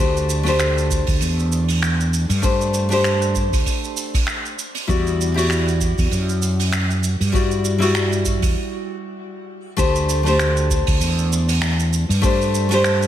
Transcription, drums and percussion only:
0.17 cabasa soft
0.30 cabasa medium
0.46 open hi-hat medium
0.46 cabasa soft
0.60 finger snap medium
0.60 cabasa medium
0.78 cabasa soft
0.91 kick medium
0.91 cabasa medium
1.07 kick loud
1.07 open hi-hat medium
1.07 cabasa soft
1.20 open hi-hat medium
1.20 cabasa medium
1.40 cabasa soft
1.52 cabasa medium
1.68 open hi-hat medium
1.68 cabasa soft
1.82 finger snap medium
1.82 open hi-hat soft
1.82 cabasa medium
2.01 cabasa soft
2.14 cabasa medium
2.30 open hi-hat medium
2.30 cabasa soft
2.43 kick loud
2.43 open hi-hat medium
2.43 cabasa medium
2.61 cabasa soft
2.74 cabasa medium
2.92 open hi-hat medium
2.92 cabasa soft
3.04 finger snap medium
3.04 open hi-hat medium
3.04 cabasa medium
3.22 cabasa soft
3.35 kick medium
3.35 cabasa medium
3.53 kick loud
3.53 open hi-hat medium
3.53 cabasa soft
3.66 kick medium
3.66 open hi-hat medium
3.66 cabasa medium
3.84 cabasa soft
3.97 cabasa medium
4.14 kick loud
4.14 open hi-hat medium
4.14 cabasa soft
4.27 finger snap medium
4.27 open hi-hat medium
4.27 cabasa medium
4.46 cabasa soft
4.59 cabasa medium
4.75 open hi-hat medium
4.75 cabasa soft
4.89 kick loud
4.89 open hi-hat medium
4.89 cabasa medium
5.07 cabasa soft
5.21 cabasa medium
5.37 open hi-hat medium
5.37 cabasa soft
5.50 finger snap medium
5.50 open hi-hat medium
5.50 cabasa medium
5.68 cabasa soft
5.81 kick medium
5.81 cabasa medium
5.98 kick medium
5.98 open hi-hat medium
5.98 cabasa medium
6.11 open hi-hat medium
6.11 cabasa medium
6.29 cabasa soft
6.42 cabasa medium
6.60 open hi-hat medium
6.60 cabasa soft
6.73 finger snap loud
6.73 open hi-hat medium
6.73 cabasa medium
6.91 cabasa soft
7.04 cabasa medium
7.21 open hi-hat medium
7.21 cabasa soft
7.34 kick loud
7.34 open hi-hat medium
7.34 cabasa medium
7.51 cabasa soft
7.65 cabasa medium
7.82 open hi-hat medium
7.82 cabasa soft
7.95 finger snap medium
7.95 open hi-hat medium
7.95 cabasa medium
8.13 cabasa soft
8.26 kick medium
8.26 cabasa medium
8.42 kick loud
8.42 open hi-hat medium
8.42 cabasa medium
9.78 kick loud
9.78 open hi-hat medium
9.78 cabasa medium
9.96 cabasa soft
10.09 cabasa loud
10.26 open hi-hat medium
10.26 cabasa medium
10.39 finger snap medium
10.39 open hi-hat medium
10.39 cabasa medium
10.57 cabasa soft
10.70 kick medium
10.70 cabasa loud
10.87 kick loud
10.87 open hi-hat medium
10.87 cabasa medium
11.01 open hi-hat medium
11.01 cabasa medium
11.19 cabasa soft
11.33 cabasa medium
11.49 open hi-hat medium
11.49 cabasa medium
11.62 finger snap loud
11.62 open hi-hat medium
11.62 cabasa medium
11.80 cabasa soft
11.93 cabasa medium
12.10 open hi-hat medium
12.10 cabasa medium
12.23 kick loud
12.23 open hi-hat medium
12.23 cabasa medium
12.42 cabasa soft
12.55 cabasa medium
12.71 open hi-hat medium
12.71 cabasa medium
12.84 finger snap medium
12.84 open hi-hat medium
12.84 cabasa medium
13.03 cabasa soft

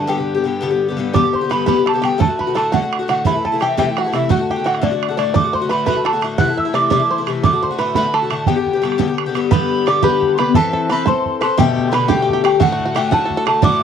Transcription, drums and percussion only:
1.15 bodhran medium
1.34 bodhran soft
1.51 bodhran medium
1.68 bodhran medium
1.87 bodhran medium
2.04 bodhran medium
2.21 bodhran loud
2.40 bodhran soft
2.57 bodhran medium
2.74 bodhran medium
2.93 bodhran medium
3.09 bodhran medium
3.25 bodhran medium
3.45 bodhran soft
3.61 bodhran medium
3.78 bodhran medium
3.97 bodhran medium
4.14 bodhran medium
4.30 bodhran medium
4.50 bodhran soft
4.67 bodhran medium
4.75 bodhran soft
4.83 bodhran medium
5.03 bodhran medium
5.19 bodhran medium
5.36 bodhran medium
5.54 bodhran soft
5.71 bodhran medium
5.87 bodhran medium
6.06 bodhran medium
6.22 bodhran medium
6.38 bodhran medium
6.58 bodhran soft
6.75 bodhran medium
6.91 bodhran medium
7.27 bodhran medium
7.44 bodhran medium
7.63 bodhran soft
7.79 bodhran medium
7.95 bodhran medium
8.14 bodhran medium
8.31 bodhran medium
8.46 bodhran medium
8.66 bodhran soft
8.83 bodhran medium
8.92 bodhran soft
9.00 bodhran medium
9.18 bodhran medium
9.35 bodhran medium
9.52 bodhran loud
9.87 bodhran medium
10.03 bodhran medium
10.22 bodhran soft
10.39 bodhran medium
10.54 bodhran medium
10.73 bodhran soft
10.90 bodhran medium
11.07 bodhran medium
11.26 bodhran soft
11.42 bodhran medium
11.59 bodhran medium
11.78 bodhran soft
11.94 bodhran medium
12.10 bodhran medium
12.29 bodhran soft
12.45 bodhran medium
12.61 bodhran medium
12.80 bodhran soft
12.96 bodhran medium
13.12 bodhran medium
13.30 bodhran soft
13.47 bodhran medium
13.63 bodhran loud

